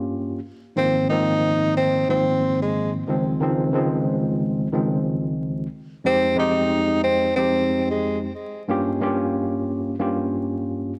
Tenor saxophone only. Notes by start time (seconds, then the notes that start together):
0.78 C4
1.10 D#4
1.77 C4
2.10 C4
2.62 G#3
6.06 C4
6.39 D#4
7.03 C4
7.36 C4
7.90 G#3